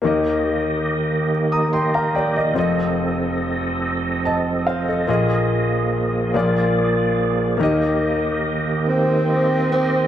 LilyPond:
<<
  \new Staff \with { instrumentName = "Grand piano" } { \time 6/8 \key ees \major \tempo 4. = 48 << { r4. r16 <bes'' ees'''>16 <g'' c'''>16 <f'' bes''>16 <d'' g''>16 <bes' ees''>16~ | <bes' ees''>16 r4. r16 <ees'' a''>8 <c'' f''>16 <a' ees''>16~ | <a' ees''>16 r2 r8. | r2. | } \\ { <ees, ees bes ees' g' ees''>2. | <f,, f, c' f' a' ees''>2. | <bes,, bes, bes f' aes' ees''>4. <bes,, bes, bes f' aes' d''>4. | <ees, ees bes ees' g' ees''>2. | } >> }
  \new Staff \with { instrumentName = "Tonewheel organ" } { \time 6/8 \key ees \major << { ees''2. | ees''2.~ | ees''4. d''4. | ees''2. | } \\ { <bes g'>2. | <c' a'>2. | <bes aes'>2. | <bes g'>2. | } >> }
  \new Staff \with { instrumentName = "Tonewheel organ" } { \clef bass \time 6/8 \key ees \major ees2. | f2.~ | f2. | ees2. | }
  \new Staff \with { instrumentName = "Tenor saxophone" } { \time 6/8 \key ees \major r2. | r2. | r2. | r4. c'4 c'8 | }
  \new Staff \with { instrumentName = "Trombone" } { \time 6/8 \key ees \major r2. | r2. | r2. | r4. c'4. | }
>>